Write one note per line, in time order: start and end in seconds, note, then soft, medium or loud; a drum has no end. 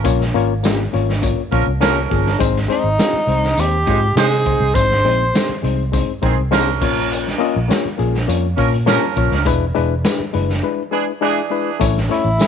0.04 0.30 A#1 loud
0.04 0.23 A#3 loud
0.04 0.23 C#4 loud
0.04 0.23 F4 loud
0.04 0.24 C#5 loud
0.04 kick loud
0.04 closed hi-hat loud
0.04 tambourine medium
0.21 snare soft
0.34 0.86 G#1 medium
0.34 0.53 A#3 loud
0.34 0.53 C#4 loud
0.34 0.53 F4 loud
0.34 0.54 C#5 loud
0.34 closed hi-hat medium
0.63 0.82 A#3 loud
0.63 0.82 C#4 medium
0.63 0.83 F4 medium
0.63 0.83 G4 loud
0.63 snare loud
0.63 closed hi-hat loud
0.63 tambourine loud
0.93 1.32 G#1 medium
0.93 1.11 A#3 medium
0.93 1.12 C#4 medium
0.93 1.12 F4 medium
0.93 1.12 C#5 loud
0.93 closed hi-hat medium
1.09 snare soft
1.22 1.41 A#3 medium
1.22 1.41 C#4 medium
1.22 1.41 F4 medium
1.22 1.42 C#5 loud
1.22 kick loud
1.22 closed hi-hat medium
1.22 tambourine medium
1.51 1.65 A#1 loud
1.51 1.64 F3 medium
1.51 1.70 A#3 medium
1.51 1.64 C#4 medium
1.51 1.71 C#4 medium
1.51 1.71 F4 medium
1.51 1.65 A#4 medium
1.51 1.71 C#5 loud
1.51 kick medium
1.51 closed hi-hat medium
1.66 2.05 C2 medium
1.80 2.37 F3 medium
1.80 2.00 A#3 loud
1.80 2.37 C#4 medium
1.80 2.00 C#4 loud
1.80 2.00 F4 loud
1.80 2.37 A#4 loud
1.80 2.00 C#5 loud
1.80 snare loud
1.80 closed hi-hat loud
1.80 tambourine loud
2.10 2.37 G1 medium
2.10 2.29 A#3 medium
2.10 2.29 C#4 medium
2.10 2.29 F4 medium
2.10 2.30 G#4 loud
2.10 kick medium
2.10 closed hi-hat medium
2.26 snare soft
2.39 2.66 G#1 loud
2.39 2.58 G#3 loud
2.39 2.59 C4 loud
2.39 2.59 D#4 loud
2.39 2.59 C5 loud
2.39 kick loud
2.39 closed hi-hat loud
2.39 tambourine medium
2.56 snare soft
2.68 2.88 G#3 loud
2.68 2.88 C4 loud
2.68 2.88 D#4 medium
2.68 3.62 D#4 medium
2.68 2.88 C5 loud
2.68 closed hi-hat medium
2.84 2.97 G#1 loud
2.98 3.17 G#3 medium
2.98 3.18 C4 medium
2.98 3.18 D#4 medium
2.98 3.18 F4 medium
2.98 snare loud
2.98 closed hi-hat loud
2.98 tambourine loud
3.13 muted fingered electric bass stroke soft
3.13 closed hi-hat medium
3.27 3.53 C2 medium
3.27 3.46 G#3 medium
3.27 3.47 C4 medium
3.27 3.47 D#4 medium
3.27 3.47 C5 medium
3.27 closed hi-hat medium
3.44 snare soft
3.57 3.83 D#2 loud
3.57 3.76 G#3 medium
3.57 3.77 C4 medium
3.57 3.77 D#4 medium
3.57 4.16 G4 loud
3.57 3.77 C5 medium
3.57 closed hi-hat medium
3.57 tambourine medium
3.86 4.13 G#2 loud
3.86 3.99 G#3 medium
3.86 4.05 G#3 medium
3.86 4.06 C4 medium
3.86 3.99 D#4 medium
3.86 4.06 D#4 medium
3.86 4.06 F4 medium
3.86 3.99 C5 medium
3.86 kick medium
3.86 closed hi-hat medium
4.15 4.54 C3 medium
4.15 4.35 G#3 medium
4.15 4.73 G#3 medium
4.15 4.35 C4 medium
4.15 4.35 D#4 medium
4.15 4.73 D#4 medium
4.15 4.76 G#4 loud
4.15 4.36 C5 loud
4.15 4.73 C5 loud
4.15 snare loud
4.15 closed hi-hat loud
4.15 tambourine loud
4.46 4.65 G#3 medium
4.46 4.65 C4 medium
4.46 4.65 D#4 medium
4.46 4.65 C5 medium
4.46 kick loud
4.46 closed hi-hat medium
4.61 4.74 C2 medium
4.74 5.01 G#1 loud
4.74 4.94 G#3 medium
4.74 4.94 C4 medium
4.74 4.94 D#4 medium
4.74 5.63 C5 loud
4.74 4.95 C5 loud
4.74 kick loud
4.74 closed hi-hat loud
4.74 tambourine medium
4.91 snare soft
5.04 5.30 A#1 medium
5.04 5.23 G#3 loud
5.04 5.24 C4 loud
5.04 5.24 D#4 medium
5.04 5.24 C5 loud
5.04 closed hi-hat medium
5.33 5.53 G#3 medium
5.33 5.53 C4 medium
5.33 5.53 D#4 medium
5.33 5.53 C5 medium
5.33 snare loud
5.33 closed hi-hat loud
5.33 tambourine loud
5.49 muted fingered electric bass stroke soft
5.49 closed hi-hat medium
5.63 6.02 C2 medium
5.63 5.82 G#3 medium
5.63 5.82 C4 medium
5.63 5.83 D#4 medium
5.63 5.83 C5 loud
5.63 closed hi-hat medium
5.92 6.11 G#3 loud
5.92 6.11 C4 medium
5.92 6.11 D#4 medium
5.92 6.12 C5 loud
5.92 kick medium
5.92 closed hi-hat medium
5.92 tambourine medium
6.22 6.37 A#1 loud
6.22 6.35 D#3 medium
6.22 6.41 G#3 loud
6.22 6.41 C4 medium
6.22 6.35 C4 medium
6.22 6.41 D#4 medium
6.22 6.35 G#4 medium
6.22 6.41 C5 loud
6.22 kick medium
6.22 closed hi-hat medium
6.37 6.81 C2 medium
6.51 7.08 F3 loud
6.51 6.70 G#3 loud
6.51 6.70 C4 loud
6.51 7.08 C#4 medium
6.51 6.71 D#4 loud
6.51 7.08 A#4 loud
6.51 6.71 C5 loud
6.51 snare loud
6.51 closed hi-hat loud
6.51 tambourine loud
6.81 7.33 A#1 loud
6.81 7.28 A#3 loud
6.81 7.29 C#4 medium
6.81 7.29 F4 medium
6.81 7.29 C#5 loud
6.81 kick loud
6.81 crash medium
7.11 closed hi-hat loud
7.11 tambourine medium
7.27 snare soft
7.38 7.58 A#3 loud
7.38 7.58 C#4 loud
7.38 7.59 F4 loud
7.38 7.59 D#5 loud
7.38 closed hi-hat medium
7.56 7.68 A#1 loud
7.68 7.87 A#3 medium
7.68 7.88 C#4 medium
7.68 7.88 F4 medium
7.68 7.88 C#5 loud
7.68 snare loud
7.68 closed hi-hat loud
7.68 tambourine loud
7.85 muted fingered electric bass stroke soft
7.98 8.25 A#1 medium
7.98 8.17 A#3 medium
7.98 8.17 C#4 medium
7.98 8.17 F4 medium
7.98 8.18 G#4 loud
7.98 closed hi-hat medium
8.15 snare soft
8.27 8.54 F2 medium
8.27 8.46 A#3 medium
8.27 8.47 C#4 medium
8.27 8.47 F4 medium
8.27 8.47 C#5 loud
8.27 closed hi-hat medium
8.27 tambourine medium
8.57 8.96 A#2 loud
8.57 8.70 F3 medium
8.57 8.76 A#3 medium
8.57 8.70 C#4 medium
8.57 8.76 C#4 medium
8.57 8.76 F4 medium
8.57 8.70 A#4 loud
8.57 8.77 C#5 loud
8.57 kick medium
8.57 closed hi-hat medium
8.72 closed hi-hat medium
8.86 9.43 F3 loud
8.86 9.05 A#3 loud
8.86 9.05 C#4 loud
8.86 9.43 C#4 loud
8.86 9.06 F4 loud
8.86 9.43 A#4 loud
8.86 9.06 C#5 loud
8.86 snare loud
8.86 closed hi-hat loud
8.86 tambourine loud
9.16 9.29 A#1 medium
9.16 9.35 A#3 medium
9.16 9.35 C#4 medium
9.16 9.35 F4 medium
9.16 9.36 C#5 loud
9.16 kick medium
9.16 closed hi-hat medium
9.31 9.45 C#2 medium
9.31 snare soft
9.45 9.71 E1 loud
9.45 9.64 G#3 loud
9.45 9.65 D4 loud
9.45 9.65 E4 loud
9.45 9.65 B4 loud
9.45 kick loud
9.45 closed hi-hat loud
9.45 tambourine medium
9.74 10.02 E1 medium
9.74 9.93 G#3 loud
9.74 9.93 D4 loud
9.74 9.94 E4 loud
9.74 9.94 B4 loud
9.74 closed hi-hat medium
10.05 10.23 G#3 loud
10.05 10.23 D4 medium
10.05 10.24 E4 medium
10.05 10.24 B4 loud
10.05 snare loud
10.05 closed hi-hat loud
10.05 tambourine loud
10.19 muted fingered electric bass stroke soft
10.33 10.60 F#1 loud
10.33 10.52 G#3 loud
10.33 10.52 D4 medium
10.33 10.53 E4 medium
10.33 10.53 B4 loud
10.33 closed hi-hat medium
10.50 snare soft
10.63 10.82 G#3 medium
10.63 10.82 D4 medium
10.63 10.82 E4 medium
10.63 10.82 B4 loud
10.91 11.05 E3 medium
10.91 11.10 G#3 medium
10.91 11.11 D4 medium
10.91 11.05 D4 medium
10.91 11.11 E4 medium
10.91 11.05 G#4 medium
10.91 11.11 B4 loud
11.21 11.78 E3 loud
11.21 11.40 G#3 loud
11.21 11.40 D4 loud
11.21 11.78 D4 medium
11.21 11.40 E4 loud
11.21 11.78 G#4 loud
11.21 11.41 G#4 loud
11.50 11.69 G#3 medium
11.50 11.70 D4 medium
11.50 11.70 E4 medium
11.50 11.70 B4 loud
11.80 12.07 A1 loud
11.80 11.99 A3 loud
11.80 11.99 C#4 loud
11.80 11.99 E4 loud
11.80 12.00 C#5 loud
11.80 kick loud
11.80 closed hi-hat loud
11.80 tambourine medium
11.97 snare soft
12.09 12.28 A3 loud
12.09 12.29 C#4 medium
12.09 12.29 E4 medium
12.09 12.47 E4 loud
12.09 12.29 C#5 loud
12.09 closed hi-hat medium
12.25 12.38 A1 loud
12.39 12.47 A3 medium
12.39 12.47 C#4 medium
12.39 12.47 E4 medium
12.39 12.47 G#4 medium
12.39 snare loud
12.39 closed hi-hat loud
12.39 tambourine loud